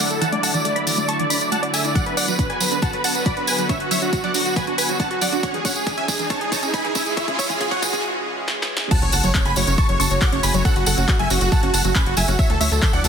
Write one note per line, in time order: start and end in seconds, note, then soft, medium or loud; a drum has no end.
0.00 5.39 D3 medium
0.00 1.91 F#3 medium
0.00 1.91 A3 medium
0.00 1.92 E4 medium
0.10 0.19 A4 medium
0.10 closed hi-hat soft
0.10 tambourine soft
0.21 0.26 E3 medium
0.21 0.30 F#5 medium
0.21 0.30 A5 loud
0.21 closed hi-hat medium
0.21 tambourine soft
0.32 0.39 A3 medium
0.32 0.41 D5 medium
0.32 closed hi-hat soft
0.43 0.52 F#5 medium
0.43 0.52 A5 medium
0.43 open hi-hat loud
0.43 tambourine medium
0.54 0.59 E3 medium
0.54 0.63 D5 medium
0.54 closed hi-hat soft
0.54 tambourine medium
0.64 0.72 A3 medium
0.64 0.74 D5 medium
0.64 closed hi-hat medium
0.64 tambourine soft
0.75 0.84 D5 medium
0.75 0.84 B5 medium
0.75 closed hi-hat soft
0.86 0.91 E3 medium
0.86 0.95 D5 medium
0.86 open hi-hat loud
0.86 tambourine medium
0.97 1.04 A3 medium
0.97 1.06 D5 medium
0.97 closed hi-hat soft
0.97 tambourine soft
1.08 1.17 A5 medium
1.08 1.17 C#6 medium
1.08 closed hi-hat medium
1.08 tambourine soft
1.19 1.24 E3 medium
1.19 1.28 D5 medium
1.19 closed hi-hat soft
1.30 1.37 D4 medium
1.30 1.39 D5 medium
1.30 1.39 B5 medium
1.30 open hi-hat loud
1.30 tambourine medium
1.41 1.50 D5 medium
1.41 closed hi-hat soft
1.41 tambourine medium
1.52 1.56 A3 medium
1.52 1.61 F#5 medium
1.52 1.61 A5 medium
1.52 closed hi-hat medium
1.52 tambourine soft
1.62 1.69 D4 medium
1.62 1.71 D5 medium
1.62 closed hi-hat soft
1.73 1.82 E5 medium
1.73 1.82 G#5 medium
1.73 open hi-hat loud
1.73 tambourine medium
1.84 1.89 E4 medium
1.84 1.93 D5 medium
1.84 closed hi-hat soft
1.84 tambourine medium
1.95 2.00 F#3 medium
1.95 5.40 F#3 medium
1.95 5.40 B3 medium
1.95 5.40 F#4 medium
1.95 2.04 D5 medium
1.95 2.04 F#5 loud
1.95 kick loud
1.95 closed hi-hat medium
1.95 tambourine soft
1.95 riser medium
2.06 2.13 D4 medium
2.06 2.15 B4 medium
2.06 closed hi-hat soft
2.17 2.26 D5 medium
2.17 2.26 F#5 medium
2.17 open hi-hat loud
2.17 tambourine medium
2.28 2.33 F#3 medium
2.28 2.37 B4 medium
2.28 closed hi-hat soft
2.28 tambourine medium
2.39 2.46 D4 medium
2.39 2.48 B4 medium
2.39 kick loud
2.39 closed hi-hat medium
2.50 2.58 B4 medium
2.50 2.58 G#5 medium
2.50 closed hi-hat medium
2.60 2.65 F#3 medium
2.60 2.69 B4 medium
2.60 open hi-hat loud
2.60 tambourine medium
2.71 2.78 D4 medium
2.71 2.80 B4 medium
2.71 closed hi-hat medium
2.71 tambourine medium
2.82 2.91 F#5 medium
2.82 2.91 A5 medium
2.82 kick loud
2.82 closed hi-hat medium
2.82 tambourine soft
2.93 2.98 F#3 medium
2.93 3.02 B4 medium
2.93 closed hi-hat soft
3.04 3.11 D4 medium
3.04 3.13 F#5 medium
3.04 3.13 A5 medium
3.04 open hi-hat loud
3.04 tambourine medium
3.15 3.24 B4 medium
3.15 closed hi-hat medium
3.15 tambourine medium
3.26 3.30 F#3 medium
3.26 3.35 D5 medium
3.26 3.35 B5 medium
3.26 kick loud
3.26 closed hi-hat medium
3.26 tambourine soft
3.37 3.43 D4 medium
3.37 3.45 B4 medium
3.37 closed hi-hat soft
3.47 3.56 B4 medium
3.47 3.56 G#5 medium
3.47 open hi-hat loud
3.47 tambourine medium
3.58 3.63 F#3 medium
3.58 3.67 B4 medium
3.58 closed hi-hat soft
3.58 tambourine medium
3.69 3.76 D4 medium
3.69 3.78 C#5 medium
3.69 3.78 E5 loud
3.69 kick loud
3.69 closed hi-hat medium
3.69 tambourine soft
3.80 3.89 F#4 medium
3.80 closed hi-hat soft
3.91 3.96 F#3 medium
3.91 4.00 C#5 medium
3.91 4.00 E5 medium
3.91 open hi-hat loud
3.91 tambourine medium
4.02 4.09 D4 medium
4.02 4.11 F#4 medium
4.02 closed hi-hat medium
4.02 tambourine soft
4.13 4.22 F#4 medium
4.13 kick loud
4.13 closed hi-hat medium
4.13 tambourine soft
4.24 4.28 F#3 medium
4.24 4.32 D5 medium
4.24 4.32 F#5 medium
4.24 closed hi-hat medium
4.34 4.41 D4 medium
4.34 4.43 F#4 medium
4.34 open hi-hat loud
4.34 tambourine medium
4.45 4.54 F#4 medium
4.45 closed hi-hat medium
4.45 tambourine soft
4.56 4.61 F#3 medium
4.56 4.65 B4 medium
4.56 4.65 G#5 medium
4.56 kick loud
4.56 closed hi-hat medium
4.56 tambourine soft
4.67 4.74 D4 medium
4.67 4.76 F#4 medium
4.67 closed hi-hat soft
4.78 4.87 B4 medium
4.78 4.87 G#5 medium
4.78 open hi-hat loud
4.78 tambourine medium
4.89 4.93 F#3 medium
4.89 4.98 F#4 medium
4.89 closed hi-hat medium
4.89 tambourine soft
4.99 5.06 D4 medium
4.99 5.09 F#5 medium
4.99 5.09 A5 medium
4.99 kick loud
4.99 closed hi-hat medium
4.99 tambourine soft
5.10 5.19 F#4 medium
5.10 closed hi-hat medium
5.21 5.26 F#3 medium
5.21 5.30 D5 medium
5.21 5.30 F#5 medium
5.21 open hi-hat loud
5.21 tambourine medium
5.32 5.39 D4 medium
5.32 5.41 F#4 medium
5.32 closed hi-hat medium
5.32 tambourine soft
5.43 8.88 E3 medium
5.43 8.88 G#3 medium
5.43 8.88 C#4 medium
5.43 8.88 G#4 medium
5.43 5.52 C#5 medium
5.43 5.52 F#5 loud
5.43 kick loud
5.43 closed hi-hat loud
5.43 tambourine soft
5.54 5.59 E3 medium
5.54 5.63 G#4 medium
5.54 closed hi-hat medium
5.65 5.72 C#4 medium
5.65 5.74 C#5 medium
5.65 5.74 F#5 medium
5.65 kick loud
5.65 open hi-hat loud
5.65 tambourine medium
5.75 5.85 G#4 medium
5.75 tambourine soft
5.86 5.91 E3 medium
5.86 5.95 G#4 medium
5.86 kick loud
5.86 closed hi-hat medium
5.86 tambourine soft
5.97 6.04 C#4 medium
5.97 6.06 E5 medium
5.97 6.06 G#5 medium
5.97 closed hi-hat medium
6.08 6.17 G#4 medium
6.08 kick loud
6.08 open hi-hat loud
6.08 tambourine medium
6.19 6.24 E3 medium
6.19 6.28 G#4 medium
6.19 closed hi-hat medium
6.19 tambourine soft
6.30 6.37 C#4 medium
6.30 6.39 C#5 medium
6.30 6.39 A5 medium
6.30 kick loud
6.30 closed hi-hat medium
6.30 tambourine soft
6.41 6.50 G#4 medium
6.41 closed hi-hat medium
6.52 6.56 E3 medium
6.52 6.61 C#5 medium
6.52 6.61 A5 medium
6.52 kick loud
6.52 open hi-hat loud
6.52 tambourine medium
6.63 6.69 C#4 medium
6.63 6.71 G#4 medium
6.63 closed hi-hat medium
6.63 tambourine medium
6.73 6.82 G#5 medium
6.73 6.82 B5 medium
6.73 kick loud
6.73 closed hi-hat loud
6.73 tambourine soft
6.84 6.89 E3 medium
6.84 6.93 G#4 medium
6.84 closed hi-hat medium
6.95 7.02 C#4 medium
6.95 7.04 E5 medium
6.95 7.04 G#5 medium
6.95 kick loud
6.95 open hi-hat loud
6.95 tambourine medium
7.06 7.15 G#4 medium
7.06 closed hi-hat medium
7.06 tambourine soft
7.17 7.22 E3 medium
7.17 7.26 C#5 medium
7.17 7.26 E5 loud
7.17 kick loud
7.17 closed hi-hat loud
7.17 tambourine soft
7.27 7.35 C#4 medium
7.27 7.37 G#4 medium
7.27 kick medium
7.27 closed hi-hat medium
7.38 7.47 C#5 medium
7.38 7.47 E5 medium
7.38 kick loud
7.38 open hi-hat loud
7.38 tambourine medium
7.49 7.54 E3 medium
7.49 7.58 G#4 medium
7.49 kick medium
7.49 closed hi-hat medium
7.49 tambourine soft
7.60 7.67 C#4 medium
7.60 7.69 G#4 medium
7.60 kick loud
7.60 closed hi-hat medium
7.60 tambourine soft
7.71 7.80 C#5 medium
7.71 7.80 F#5 medium
7.71 kick medium
7.71 closed hi-hat medium
7.82 7.87 E3 medium
7.82 7.91 G#4 medium
7.82 kick loud
7.82 open hi-hat loud
7.82 tambourine medium
7.93 8.00 C#4 medium
7.93 8.02 G#4 medium
7.93 kick medium
7.93 closed hi-hat medium
7.93 tambourine medium
8.48 snare medium
8.62 snare medium
8.77 snare loud
8.91 12.36 C#3 medium
8.91 8.96 F#3 medium
8.91 13.08 F#3 medium
8.91 12.35 A3 medium
8.91 12.36 F#4 medium
8.91 9.00 F#5 medium
8.91 9.00 A5 loud
8.91 kick loud
8.91 closed hi-hat medium
8.91 crash loud
8.91 tambourine soft
8.91 sub drop medium
9.02 9.11 F#1 medium
9.02 9.09 C#4 medium
9.02 9.11 C#5 medium
9.02 closed hi-hat medium
9.12 9.22 F#1 loud
9.12 9.22 F#5 medium
9.12 9.22 A5 medium
9.12 open hi-hat loud
9.12 tambourine medium
9.23 9.33 F#1 medium
9.23 9.28 F#3 medium
9.23 9.32 C#5 medium
9.23 9.33 C#5 medium
9.23 closed hi-hat medium
9.23 tambourine medium
9.35 9.41 C#4 medium
9.35 9.43 C#5 medium
9.35 kick loud
9.35 clap loud
9.35 closed hi-hat medium
9.35 tambourine soft
9.45 9.54 F#1 medium
9.45 9.54 G#5 medium
9.45 9.54 B5 medium
9.45 closed hi-hat medium
9.56 9.65 F#1 loud
9.56 9.61 F#3 medium
9.56 9.65 C#5 medium
9.56 open hi-hat loud
9.56 tambourine medium
9.67 9.76 F#1 medium
9.67 9.74 C#4 medium
9.67 9.76 C#5 medium
9.67 closed hi-hat medium
9.67 tambourine medium
9.78 9.87 A5 medium
9.78 9.87 C#6 medium
9.78 kick loud
9.78 closed hi-hat medium
9.78 tambourine soft
9.89 9.98 F#1 medium
9.89 9.93 F#3 medium
9.89 9.98 C#5 medium
9.89 closed hi-hat medium
10.00 10.09 F#1 loud
10.00 10.06 C#4 medium
10.00 10.09 A5 medium
10.00 10.09 C#6 medium
10.00 open hi-hat loud
10.00 tambourine loud
10.11 10.20 F#1 medium
10.11 10.19 C#5 medium
10.11 closed hi-hat medium
10.11 tambourine soft
10.21 10.26 F#3 medium
10.21 10.30 F#5 medium
10.21 10.30 D6 medium
10.21 kick loud
10.21 clap loud
10.21 closed hi-hat medium
10.21 tambourine soft
10.32 10.41 F#1 medium
10.32 10.39 C#4 medium
10.32 10.41 C#5 medium
10.32 closed hi-hat medium
10.43 10.52 F#1 loud
10.43 10.52 G#5 medium
10.43 10.52 B5 medium
10.43 open hi-hat loud
10.43 tambourine loud
10.54 10.63 F#1 medium
10.54 10.59 F#3 medium
10.54 10.63 C#5 medium
10.54 closed hi-hat medium
10.54 tambourine medium
10.65 10.72 C#4 medium
10.65 10.74 A4 medium
10.65 10.74 F#5 loud
10.65 kick loud
10.65 closed hi-hat medium
10.65 tambourine soft
10.76 10.85 F#1 medium
10.76 10.85 F#4 medium
10.76 closed hi-hat medium
10.86 10.96 F#1 loud
10.86 10.91 F#3 medium
10.86 10.96 A4 medium
10.86 10.95 F#5 medium
10.86 10.96 F#5 loud
10.86 open hi-hat loud
10.86 tambourine loud
10.97 11.06 F#1 medium
10.97 11.04 C#4 medium
10.97 11.06 F#4 medium
10.97 closed hi-hat medium
10.97 tambourine medium
11.08 11.17 F#4 medium
11.08 kick loud
11.08 clap loud
11.08 closed hi-hat medium
11.08 tambourine soft
11.19 11.28 F#1 medium
11.19 11.24 F#3 medium
11.19 11.28 E5 medium
11.19 11.28 G#5 medium
11.19 closed hi-hat medium
11.30 11.39 F#1 loud
11.30 11.37 C#4 medium
11.30 11.39 F#4 medium
11.30 open hi-hat loud
11.30 tambourine medium
11.41 11.50 F#1 loud
11.41 11.50 F#4 medium
11.41 closed hi-hat medium
11.41 tambourine soft
11.52 11.56 F#3 medium
11.52 11.61 F#5 medium
11.52 11.61 A5 medium
11.52 kick loud
11.52 closed hi-hat medium
11.52 tambourine soft
11.63 11.72 F#1 medium
11.63 11.70 C#4 medium
11.63 11.72 F#4 medium
11.63 closed hi-hat medium
11.73 11.83 F#1 loud
11.73 11.82 F#5 medium
11.73 11.82 A5 medium
11.73 open hi-hat loud
11.73 tambourine loud
11.84 11.93 F#1 medium
11.84 11.89 F#3 medium
11.84 11.93 F#4 medium
11.84 closed hi-hat medium
11.84 tambourine medium
11.95 12.02 C#4 medium
11.95 12.04 G#5 medium
11.95 12.04 B5 medium
11.95 kick loud
11.95 clap loud
11.95 closed hi-hat medium
11.95 tambourine soft
12.06 12.15 F#1 medium
12.06 12.15 F#4 medium
12.06 closed hi-hat medium
12.17 12.26 F#1 loud
12.17 12.22 F#3 medium
12.17 12.26 E5 medium
12.17 12.26 G#5 medium
12.17 open hi-hat loud
12.17 tambourine medium
12.28 12.37 F#1 medium
12.28 12.35 C#4 medium
12.28 12.37 F#4 medium
12.28 closed hi-hat medium
12.28 tambourine medium
12.39 13.08 D3 medium
12.39 13.08 A3 medium
12.39 13.08 E4 medium
12.39 12.48 C#5 medium
12.39 12.48 E5 loud
12.39 kick loud
12.39 closed hi-hat medium
12.39 tambourine soft
12.50 12.59 D2 medium
12.50 12.54 E3 medium
12.50 12.59 A4 medium
12.50 closed hi-hat medium
12.60 12.69 D2 loud
12.60 12.67 A3 medium
12.60 12.69 C#5 medium
12.60 12.69 E5 medium
12.60 12.69 E5 loud
12.60 open hi-hat loud
12.60 tambourine loud
12.71 12.80 D2 loud
12.71 12.80 A4 medium
12.71 closed hi-hat medium
12.71 tambourine medium
12.82 12.87 E3 medium
12.82 12.91 A4 medium
12.82 kick loud
12.82 clap loud
12.82 closed hi-hat medium
12.82 tambourine soft
12.93 13.02 D2 medium
12.93 13.00 A3 medium
12.93 13.02 D5 medium
12.93 13.02 F#5 loud
12.93 closed hi-hat medium
13.04 13.08 D2 loud
13.04 13.08 A4 medium
13.04 open hi-hat loud
13.04 tambourine medium